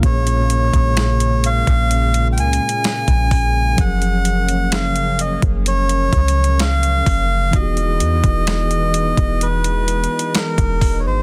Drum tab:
HH |x--x--x--x--x--x--x--x--x--x--x-x-x-x--x--o-----|x--x--x--x--x--x--x--x--x--x--x-x-x-x--x--o-----|x--x--x--x--x--x--x--x--x--x--x-x-x-x--x--o-----|
SD |------------o-----------------------o-----------|------------o-----------------------o-----------|------------o-----------------------o-----------|
BD |o--------o-----------o-----------------o--o-----|o--------------------o--------o-----------o-----|o--------o-----------o-----------------o--o-----|